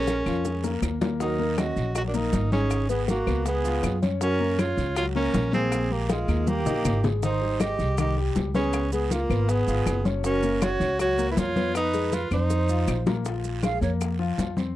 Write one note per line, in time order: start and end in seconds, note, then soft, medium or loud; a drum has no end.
0.00 0.20 A#1 medium
0.00 0.19 G#3 medium
0.00 0.82 C#4 loud
0.00 0.19 G#4 medium
0.00 0.82 A#4 medium
0.07 high bongo medium
0.07 high conga soft
0.07 short guiro medium
0.07 maracas medium
0.26 0.79 F2 medium
0.26 0.42 F3 medium
0.26 0.42 F4 medium
0.26 high bongo soft
0.26 short guiro medium
0.26 claves medium
0.26 maracas soft
0.45 0.60 G#3 medium
0.45 0.60 G#4 medium
0.45 high bongo medium
0.45 high conga soft
0.45 long guiro medium
0.45 maracas medium
0.64 0.95 A#3 medium
0.64 0.95 A#4 medium
0.64 high bongo medium
0.64 high conga soft
0.64 maracas medium
0.82 1.71 D#2 medium
0.82 low bongo medium
0.82 high conga soft
0.82 short guiro medium
0.82 claves medium
0.82 maracas medium
1.01 1.17 A#3 medium
1.01 1.17 A#4 medium
1.01 low bongo medium
1.01 high conga medium
1.01 short guiro medium
1.01 maracas soft
1.20 1.36 F#3 medium
1.20 1.61 D#4 medium
1.20 1.36 F#4 medium
1.20 1.59 A#4 medium
1.20 high bongo medium
1.20 high conga soft
1.20 long guiro medium
1.20 maracas medium
1.39 1.54 A#3 medium
1.39 1.55 A#4 medium
1.39 high bongo soft
1.39 high conga soft
1.58 1.89 C#4 medium
1.58 1.96 F#4 medium
1.58 1.89 C#5 medium
1.58 1.95 D#5 medium
1.58 high bongo medium
1.58 high conga medium
1.58 short guiro medium
1.58 claves medium
1.58 maracas medium
1.76 2.29 A#1 medium
1.76 high bongo soft
1.76 high conga soft
1.76 short guiro medium
1.76 maracas soft
1.95 2.11 F#3 medium
1.95 2.11 F#4 medium
1.95 2.02 F#4 medium
1.95 2.01 D#5 medium
1.95 high bongo medium
1.95 high conga soft
1.95 long guiro medium
1.95 claves medium
1.95 maracas medium
2.07 2.17 D4 medium
2.07 2.14 A#4 soft
2.14 2.45 A#3 medium
2.14 2.53 D#4 medium
2.14 2.51 A#4 medium
2.14 2.45 A#4 medium
2.14 high conga soft
2.14 maracas medium
2.33 3.21 G#1 medium
2.33 high bongo soft
2.33 low bongo medium
2.33 high conga medium
2.33 short guiro medium
2.33 maracas medium
2.52 2.88 C#4 loud
2.52 2.83 D#4 medium
2.52 2.87 G#4 medium
2.52 2.83 D#5 medium
2.52 high conga medium
2.52 short guiro medium
2.52 maracas soft
2.71 high bongo medium
2.71 high conga soft
2.71 long guiro medium
2.71 claves medium
2.71 maracas medium
2.89 3.05 B3 medium
2.89 3.07 B3 medium
2.89 3.07 G#4 medium
2.89 3.05 B4 medium
2.89 high bongo soft
2.89 high conga soft
2.89 maracas soft
3.08 3.44 A#3 medium
3.08 3.24 F#4 medium
3.08 3.44 F#4 medium
3.08 3.24 F#5 medium
3.08 high bongo medium
3.08 high conga medium
3.08 short guiro medium
3.08 maracas medium
3.27 3.80 C#2 medium
3.27 3.58 B3 medium
3.27 3.58 B4 medium
3.27 high bongo soft
3.27 short guiro medium
3.27 claves medium
3.27 maracas soft
3.46 4.00 B3 medium
3.46 3.99 G#4 medium
3.46 high bongo medium
3.46 high conga soft
3.46 long guiro medium
3.46 maracas medium
3.65 3.96 F4 medium
3.65 3.96 F5 medium
3.65 high conga soft
3.65 maracas medium
3.83 4.72 F#2 medium
3.83 high bongo soft
3.83 low bongo medium
3.83 high conga soft
3.83 short guiro medium
3.83 claves medium
3.83 maracas medium
4.02 4.18 C#4 medium
4.02 4.18 C#5 medium
4.02 high conga medium
4.02 short guiro medium
4.02 maracas soft
4.21 4.37 F#3 medium
4.21 4.62 C#4 medium
4.21 4.37 F#4 medium
4.21 4.61 A#4 medium
4.21 high bongo medium
4.21 high conga soft
4.21 long guiro medium
4.21 maracas medium
4.40 4.56 A#3 medium
4.40 4.56 A#4 medium
4.40 high bongo soft
4.40 high conga soft
4.59 4.90 C#4 medium
4.59 4.97 F4 medium
4.59 4.90 C#5 medium
4.59 4.97 C#5 medium
4.59 high bongo medium
4.59 high conga medium
4.59 short guiro medium
4.59 claves medium
4.59 maracas medium
4.77 5.30 C#2 medium
4.77 high bongo soft
4.77 high conga soft
4.77 short guiro medium
4.77 maracas soft
4.96 5.12 F#3 medium
4.96 5.06 F4 medium
4.96 5.12 F#4 medium
4.96 5.04 C#5 medium
4.96 high bongo medium
4.96 high conga soft
4.96 long guiro medium
4.96 claves medium
4.96 maracas medium
5.15 5.46 A#3 medium
5.15 5.51 C#4 medium
5.15 5.46 A#4 medium
5.15 5.51 A#4 medium
5.15 high conga soft
5.34 6.22 A#1 medium
5.34 high bongo soft
5.34 low bongo medium
5.34 high conga medium
5.34 short guiro medium
5.34 maracas medium
5.53 5.84 A#3 medium
5.53 5.94 C4 loud
5.53 5.93 G#4 medium
5.53 5.84 A#4 medium
5.53 high conga medium
5.53 short guiro medium
5.53 maracas soft
5.72 high bongo medium
5.72 high conga soft
5.72 long guiro medium
5.72 claves medium
5.72 maracas medium
5.91 6.06 G#3 medium
5.91 6.10 A#3 medium
5.91 6.10 G4 medium
5.91 6.06 G#4 medium
5.91 high bongo soft
5.91 high conga soft
6.10 6.50 G#3 medium
6.10 6.25 F4 medium
6.10 6.50 F4 medium
6.10 6.25 F5 medium
6.10 high bongo medium
6.10 high conga medium
6.10 short guiro medium
6.10 maracas medium
6.28 6.63 D#2 medium
6.28 6.59 A#3 medium
6.28 6.60 A#4 medium
6.28 short guiro medium
6.28 claves medium
6.28 maracas soft
6.47 7.04 A#3 loud
6.47 7.04 G4 medium
6.47 low bongo medium
6.47 high conga medium
6.47 long guiro medium
6.47 maracas medium
6.66 6.84 A#1 medium
6.66 6.97 D#4 medium
6.66 6.97 D#5 medium
6.66 low bongo medium
6.66 low conga medium
6.66 maracas medium
6.85 7.73 G#1 medium
6.85 low bongo medium
6.85 low conga medium
6.85 short guiro medium
6.85 claves medium
6.85 maracas medium
7.04 7.19 G#3 medium
7.04 7.20 G#4 medium
7.04 low bongo medium
7.04 low conga medium
7.04 short guiro medium
7.04 maracas soft
7.22 7.38 D#3 medium
7.22 7.38 D#4 medium
7.22 7.63 D#4 medium
7.22 7.62 C5 medium
7.22 high bongo medium
7.22 high conga soft
7.22 long guiro medium
7.22 maracas medium
7.42 7.57 G3 medium
7.42 7.57 G4 medium
7.42 high bongo soft
7.42 high conga soft
7.60 7.91 G#3 medium
7.60 7.92 G4 medium
7.60 7.99 G4 medium
7.60 7.98 D#5 medium
7.60 high bongo medium
7.60 high conga medium
7.60 short guiro medium
7.60 claves medium
7.60 maracas medium
7.79 8.32 C2 medium
7.79 high bongo soft
7.79 high conga soft
7.79 short guiro medium
7.79 maracas soft
7.98 8.14 D#3 medium
7.98 8.14 D#4 medium
7.98 8.16 G4 medium
7.98 8.16 D#5 medium
7.98 high bongo medium
7.98 high conga soft
7.98 long guiro medium
7.98 claves medium
7.98 maracas medium
8.17 8.48 G3 medium
8.17 8.48 G4 medium
8.17 high conga soft
8.35 9.24 C#2 medium
8.35 high bongo soft
8.35 low bongo medium
8.35 high conga medium
8.35 short guiro medium
8.35 maracas medium
8.55 8.86 B3 medium
8.55 8.90 C#4 medium
8.55 8.90 G#4 medium
8.55 8.86 B4 medium
8.55 high conga loud
8.55 short guiro medium
8.55 maracas soft
8.73 high bongo medium
8.73 high conga soft
8.73 long guiro medium
8.73 claves medium
8.73 maracas medium
8.92 9.08 G#3 medium
8.92 9.13 B3 medium
8.92 9.13 G#4 medium
8.92 9.08 G#4 medium
8.92 high bongo soft
8.92 high conga soft
8.92 maracas medium
9.11 9.51 A#3 medium
9.11 9.27 F4 medium
9.11 9.51 F4 medium
9.11 9.27 F5 medium
9.11 high bongo medium
9.11 high conga medium
9.11 short guiro medium
9.11 maracas medium
9.30 9.65 G#1 medium
9.30 9.61 B3 medium
9.30 9.61 B4 medium
9.30 high bongo soft
9.30 short guiro medium
9.30 claves medium
9.30 maracas soft
9.49 10.06 B3 medium
9.49 10.06 G#4 medium
9.49 high bongo medium
9.49 high conga soft
9.49 long guiro medium
9.49 maracas medium
9.67 9.85 G#1 medium
9.67 9.99 F4 medium
9.67 9.99 F5 medium
9.67 high conga soft
9.67 maracas medium
9.86 10.75 F#1 medium
9.86 high bongo soft
9.86 low bongo medium
9.86 high conga soft
9.86 short guiro medium
9.86 claves medium
9.86 maracas medium
10.05 10.21 C#4 medium
10.05 10.21 C#5 medium
10.05 high conga medium
10.05 short guiro medium
10.05 maracas soft
10.24 10.40 F#3 medium
10.24 10.65 C#4 medium
10.24 10.40 F#4 medium
10.24 10.65 A#4 medium
10.24 high bongo medium
10.24 high conga soft
10.24 long guiro medium
10.24 maracas medium
10.43 10.59 A#3 medium
10.43 10.59 A#4 medium
10.43 high bongo soft
10.43 high conga soft
10.43 maracas medium
10.62 10.93 C#4 medium
10.62 11.00 F#4 medium
10.62 10.93 C#5 medium
10.62 11.00 C#5 medium
10.62 high bongo medium
10.62 high conga medium
10.62 short guiro medium
10.62 claves medium
10.62 maracas medium
10.80 11.33 C#2 medium
10.80 high bongo soft
10.80 short guiro medium
10.80 maracas soft
10.99 11.15 F#3 medium
10.99 11.15 F#4 medium
10.99 11.29 F#4 medium
10.99 11.29 C#5 medium
10.99 high bongo medium
10.99 high conga soft
10.99 long guiro medium
10.99 claves medium
10.99 maracas medium
11.18 11.49 A#3 medium
11.18 11.49 A#4 medium
11.18 high conga soft
11.18 maracas medium
11.30 11.40 E4 medium
11.30 11.40 B4 medium
11.37 12.26 F2 medium
11.37 11.76 F4 loud
11.37 11.75 C#5 medium
11.37 high bongo soft
11.37 low bongo medium
11.37 high conga medium
11.37 short guiro medium
11.37 maracas medium
11.56 11.87 B3 medium
11.56 11.87 B4 medium
11.56 high conga medium
11.56 short guiro medium
11.56 maracas soft
11.75 12.16 D#4 loud
11.75 12.13 B4 medium
11.75 high bongo medium
11.75 high conga soft
11.75 long guiro medium
11.75 claves medium
11.75 maracas medium
11.94 12.09 G#3 medium
11.94 12.09 G#4 medium
11.94 high bongo soft
11.94 high conga soft
11.94 maracas medium
12.12 12.28 F4 medium
12.12 12.32 F4 medium
12.12 12.31 B4 medium
12.12 12.28 F5 medium
12.12 high bongo medium
12.12 high conga medium
12.12 short guiro medium
12.12 maracas medium
12.31 12.84 F2 medium
12.31 12.62 C4 medium
12.31 13.04 D#4 medium
12.31 12.62 C5 medium
12.31 13.03 C5 medium
12.31 high bongo soft
12.31 short guiro medium
12.31 claves medium
12.31 maracas soft
12.50 high bongo medium
12.50 high conga soft
12.50 long guiro medium
12.50 maracas medium
12.69 13.00 F4 medium
12.69 13.00 F5 medium
12.69 high conga soft
12.69 maracas medium
12.87 13.76 A#1 medium
12.87 low bongo medium
12.87 high conga soft
12.87 short guiro medium
12.87 claves medium
12.87 maracas medium
13.06 13.22 A#3 medium
13.06 13.22 A#4 medium
13.06 low bongo medium
13.06 high conga loud
13.06 short guiro medium
13.06 maracas soft
13.25 13.56 F3 medium
13.25 13.57 F4 medium
13.25 high bongo medium
13.25 high conga soft
13.25 long guiro medium
13.25 maracas medium
13.44 high bongo soft
13.44 high conga soft
13.44 maracas soft
13.63 13.79 G#3 medium
13.63 13.79 G#4 medium
13.63 13.81 F5 medium
13.63 high bongo medium
13.63 high conga medium
13.63 short guiro medium
13.63 claves medium
13.63 maracas medium
13.81 14.34 F2 medium
13.81 14.13 A#3 medium
13.81 14.13 A#4 medium
13.81 13.92 C#5 soft
13.81 high bongo soft
13.81 high conga soft
13.81 short guiro medium
13.81 maracas soft
14.01 high bongo medium
14.01 high conga soft
14.01 long guiro medium
14.01 claves medium
14.01 maracas medium
14.19 14.50 F3 medium
14.19 14.51 F4 medium
14.19 high conga soft
14.38 14.76 F2 medium
14.38 high bongo soft
14.38 low bongo medium
14.38 high conga medium
14.38 short guiro medium
14.38 maracas medium
14.57 14.76 C4 medium
14.57 14.76 C5 medium
14.57 high conga medium
14.57 short guiro medium
14.57 maracas soft